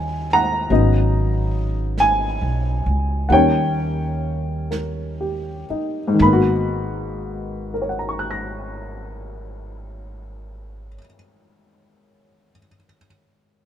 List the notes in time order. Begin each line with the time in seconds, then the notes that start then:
Already playing: D#2 G3 A#3 C#4 D#4 C#5 G#5
0.30 A#5, snare
0.34 F#5
0.70 G#1 C#3 F#3 B3 D#4, brush sweep
1.97 G#5, brush sweep, snare, hi-hat pedal
2.42 B1
2.86 C#2
3.29 D#2 D#3 G3 A#3 F#5 G5, brush sweep
3.33 C#4 C#5
4.71 A#4, brush sweep, snare, hi-hat pedal
5.21 G4
5.70 D#4, muted upright bass stroke
6.08 G#2
6.14 D#3
6.19 G#1 A#3 B5, kick, floor tom
6.26 B3
6.33 F#4
7.74 A#4
7.82 C#5
7.89 F#5
7.99 A#5
8.09 C#6
8.19 F#6
8.31 A#6